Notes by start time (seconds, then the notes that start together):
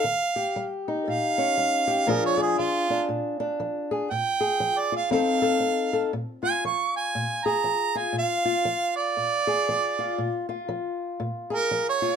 Already playing: F5
0.04 D#3
0.36 G4
0.56 G3
0.88 D#4
1.08 A#2 F5
1.38 C#4
1.57 G3
1.87 G4
2.07 A#2 F3 D4 F4 G#4 A#4
2.26 C#5
2.37 G#4
2.42 G#4
2.58 F3 F4
2.90 D4
3.09 A#2
3.40 D4
3.60 F3
3.91 G#4
4.10 A#2 G5
4.41 G#4
4.60 F3
4.79 D5
4.92 F4
4.97 F5
5.11 F3 C4 D#4 A4 F5
5.42 A4
5.60 C4
5.93 A4
6.13 A#2
6.43 F4 G#5
6.65 F3 C#6
6.97 G#5
7.15 A#2
7.45 G#4 A#5
7.64 F3
7.95 F4 G#5
8.13 A#2
8.18 F5
8.45 F4
8.65 F3
8.96 D5
9.17 A#2
9.47 G#4
9.69 F3
9.99 F4
10.18 A#2
10.49 F4
10.69 F3
11.20 A#2
11.50 G#4
11.54 A#4
11.71 F3
11.89 C#5
12.02 F4